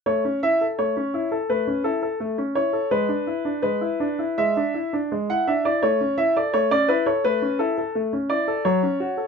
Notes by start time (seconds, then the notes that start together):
0.06 A3 C#5
0.25 C#4
0.43 E4 E5
0.61 A4
0.79 A3 C#5
0.97 C#4
1.14 E4
1.32 A4
1.49 A3 B4
1.67 C#4
1.84 E4 A4
2.03 A4
2.20 A3
2.38 C#4
2.55 E4 C#5
2.73 A4
2.91 G#3 B4
3.09 D4
3.27 E4
3.45 D4
3.62 G#3 B4
3.81 E4
4.00 D4
4.19 E4
4.38 G#3 E5
4.57 D4
4.74 E4
4.93 D4
5.12 G#3
5.29 E4 F#5
5.47 D4 E5
5.65 E4 D5
5.83 A3 C#5
6.01 C#4
6.18 E4 E5
6.37 A4 D5
6.54 A3 C#5
6.71 C#4 D5
6.88 E4 B4
7.06 A4 C#5
7.24 A3 B4
7.42 C#4
7.59 E4 A4
7.78 A4
7.95 A3
8.13 C#4
8.30 E4 D5
8.48 A4
8.65 F#3 C#5
8.83 C#4
9.00 F#4
9.17 A4